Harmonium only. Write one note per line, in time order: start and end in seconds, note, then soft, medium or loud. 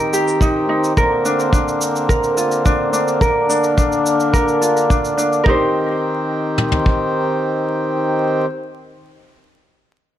0.00 0.93 D#3 medium
0.00 0.93 C4 medium
0.00 0.93 G4 medium
0.97 5.42 D3 medium
0.97 5.42 A#3 medium
0.97 3.19 C4 medium
3.20 5.42 D4 medium
5.46 8.46 C4 medium
5.46 8.46 G4 medium